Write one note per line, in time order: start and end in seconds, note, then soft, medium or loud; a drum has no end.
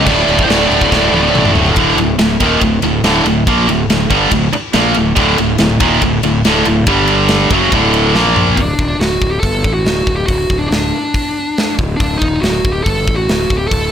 0.05 0.23 D1 loud
0.05 0.14 D2 medium
0.05 0.15 A2 loud
0.05 0.43 D5 medium
0.05 kick loud
0.05 crash medium
0.14 0.22 D2 medium
0.14 0.23 A2 medium
0.23 0.29 D2 medium
0.23 0.31 A2 medium
0.28 0.45 D1 medium
0.28 0.37 D2 medium
0.28 0.39 A2 medium
0.28 crash medium
0.37 0.45 D2 medium
0.37 0.46 A2 medium
0.37 kick medium
0.42 0.53 D2 medium
0.42 0.53 A2 medium
0.42 0.49 C5 medium
0.48 0.66 D1 loud
0.48 1.51 D5 medium
0.48 snare loud
0.48 crash medium
0.53 0.60 D2 medium
0.53 0.61 A2 medium
0.60 0.68 D2 medium
0.60 0.69 A2 medium
0.68 0.87 D1 medium
0.68 0.76 D2 medium
0.68 0.76 A2 loud
0.68 crash medium
0.76 0.82 D2 medium
0.76 0.84 A2 medium
0.81 0.90 D2 medium
0.81 0.91 A2 medium
0.81 kick medium
0.92 1.08 D1 medium
0.92 0.98 D2 medium
0.92 0.99 A2 medium
0.92 kick loud
0.92 snare medium
0.99 1.06 D2 medium
0.99 1.07 A2 medium
1.07 1.14 D2 medium
1.07 1.14 A2 medium
1.12 1.29 D1 medium
1.12 1.21 D2 medium
1.12 1.22 A2 medium
1.12 high tom medium
1.22 1.29 D2 medium
1.22 1.30 A2 medium
1.29 1.37 D2 medium
1.29 1.37 A2 medium
1.33 1.50 A1 medium
1.33 1.44 D2 medium
1.33 mid tom medium
1.38 1.45 A2 medium
1.45 1.52 D2 medium
1.45 1.52 A2 medium
1.45 mid tom loud
1.52 1.71 D1 medium
1.52 1.60 D2 medium
1.52 1.60 A2 medium
1.52 floor tom loud
1.60 1.68 D2 medium
1.60 1.68 A2 medium
1.66 1.76 D2 medium
1.66 1.76 A2 medium
1.66 floor tom medium
1.76 1.96 D1 medium
1.76 1.97 D2 medium
1.76 1.97 A2 loud
1.76 1.98 D3 loud
1.76 kick loud
1.76 ride loud
1.97 2.17 D1 medium
1.97 2.15 D2 medium
1.97 2.15 A2 medium
1.97 ride medium
2.19 2.39 D1 medium
2.19 2.36 D2 medium
2.19 2.37 A2 medium
2.19 snare loud
2.19 ride loud
2.40 2.60 D#1 medium
2.40 2.61 D#2 medium
2.40 2.61 A#2 medium
2.40 2.62 D#3 medium
2.40 kick loud
2.40 ride medium
2.61 2.82 D1 medium
2.61 2.79 D2 medium
2.61 2.79 A2 medium
2.61 kick loud
2.61 ride loud
2.82 3.03 D1 medium
2.82 3.00 D2 medium
2.82 3.01 A2 medium
2.82 ride medium
3.04 3.24 D1 medium
3.04 3.25 D2 loud
3.04 3.25 A2 loud
3.04 3.25 D3 loud
3.04 snare loud
3.04 ride loud
3.25 3.45 D1 medium
3.25 3.43 D2 medium
3.25 3.43 A2 medium
3.25 ride medium
3.47 3.67 A#1 medium
3.47 3.68 A#2 medium
3.47 3.68 F3 loud
3.47 3.68 A#3 loud
3.47 kick loud
3.47 ride loud
3.67 3.88 D1 medium
3.67 3.85 D2 medium
3.67 3.85 A2 medium
3.67 ride medium
3.89 4.09 D1 medium
3.89 4.07 D2 medium
3.89 4.07 A2 medium
3.89 snare loud
3.89 ride loud
4.10 4.30 G1 medium
4.10 4.31 G2 medium
4.10 4.31 D3 medium
4.10 4.32 G3 loud
4.10 kick loud
4.10 ride medium
4.31 4.51 D1 medium
4.31 4.49 D2 medium
4.31 4.49 A2 medium
4.31 kick medium
4.31 ride loud
4.53 muted fingered electric bass stroke soft
4.53 muted distorted electric guitar stroke medium
4.53 ride medium
4.73 4.94 A#1 loud
4.73 4.95 A#2 medium
4.73 4.95 F3 loud
4.73 4.95 A#3 loud
4.73 snare loud
4.73 ride loud
4.94 5.16 D1 medium
4.94 5.13 D2 medium
4.94 5.13 A2 medium
4.94 ride medium
5.16 5.37 D1 medium
5.16 5.37 D2 loud
5.16 5.37 A2 loud
5.16 5.38 D3 loud
5.16 kick loud
5.16 ride loud
5.38 5.59 D1 medium
5.38 5.55 D2 medium
5.38 5.56 A2 medium
5.38 ride medium
5.58 5.80 D1 medium
5.58 5.76 D2 medium
5.58 5.77 A2 medium
5.58 snare loud
5.58 ride loud
5.80 6.00 D#1 medium
5.80 6.01 D#2 loud
5.80 6.02 A#2 medium
5.80 6.02 D#3 loud
5.80 kick loud
5.80 ride medium
6.02 6.22 D1 medium
6.02 6.19 D2 medium
6.02 6.19 A2 medium
6.02 kick loud
6.02 ride loud
6.23 6.43 D1 medium
6.23 6.40 D2 medium
6.23 6.40 A2 medium
6.23 ride medium
6.45 6.65 D1 medium
6.45 6.65 D2 medium
6.45 6.66 A2 loud
6.45 6.66 D3 loud
6.45 snare loud
6.45 ride loud
6.65 6.86 D1 medium
6.65 6.83 D2 medium
6.65 6.83 A2 medium
6.65 ride medium
6.87 7.47 G1 loud
6.87 7.50 G2 medium
6.87 7.51 D3 loud
6.87 7.51 G3 loud
6.87 kick loud
6.87 ride loud
7.08 ride medium
7.29 snare loud
7.29 ride loud
7.50 7.70 F#1 medium
7.50 7.71 F#2 medium
7.50 7.72 C#3 medium
7.50 7.72 F#3 loud
7.50 kick loud
7.50 ride medium
7.72 8.12 D1 medium
7.72 8.14 D2 medium
7.72 8.14 A2 medium
7.72 8.15 D3 loud
7.72 kick loud
7.72 ride loud
7.94 ride medium
8.15 8.54 A#1 loud
8.15 8.57 A#2 loud
8.15 8.57 F3 loud
8.15 8.58 A#3 loud
8.15 snare medium
8.26 high tom medium
8.36 mid tom medium
8.47 floor tom medium
8.56 8.77 D1 medium
8.56 8.97 D4 medium
8.56 kick loud
8.56 open hi-hat medium
8.79 8.99 D#1 medium
8.79 kick medium
8.99 9.20 D1 medium
8.99 9.31 F#4 medium
8.99 snare loud
8.99 open hi-hat medium
9.22 9.42 D1 medium
9.22 kick medium
9.31 9.40 G4 medium
9.40 9.63 G1 medium
9.40 9.73 A4 loud
9.40 kick loud
9.40 open hi-hat medium
9.64 9.84 A1 medium
9.64 kick loud
9.74 10.16 F#4 medium
9.85 10.05 D1 medium
9.85 snare loud
9.85 open hi-hat medium
10.07 10.27 D1 medium
10.07 kick medium
10.16 10.26 G4 medium
10.27 10.48 D1 medium
10.27 10.57 F#4 medium
10.27 kick loud
10.27 open hi-hat medium
10.50 10.70 D1 medium
10.50 kick medium
10.59 10.68 D4 medium
10.69 10.91 D1 medium
10.69 11.73 D4 medium
10.69 snare loud
10.69 open hi-hat soft
11.14 kick loud
11.14 open hi-hat soft
11.58 snare loud
11.58 open hi-hat soft
11.79 11.98 D1 medium
11.79 kick medium
11.97 12.20 D1 medium
11.97 12.18 D4 medium
11.97 kick loud
11.97 open hi-hat medium
12.18 12.42 D#1 medium
12.18 12.42 D#4 medium
12.18 kick medium
12.40 12.63 D1 medium
12.40 12.72 F#4 medium
12.40 snare loud
12.40 open hi-hat medium
12.65 12.84 D1 medium
12.65 kick medium
12.73 12.83 G4 medium
12.84 13.06 G1 medium
12.84 13.14 A4 medium
12.84 kick loud
12.84 open hi-hat medium
13.07 13.27 A1 medium
13.07 kick loud
13.16 13.58 F#4 medium
13.29 13.48 D1 medium
13.29 snare loud
13.29 open hi-hat medium
13.50 13.70 D1 medium
13.50 kick medium
13.58 13.67 G4 medium
13.68 13.91 D1 medium
13.68 13.92 A4 medium
13.68 kick loud
13.68 open hi-hat medium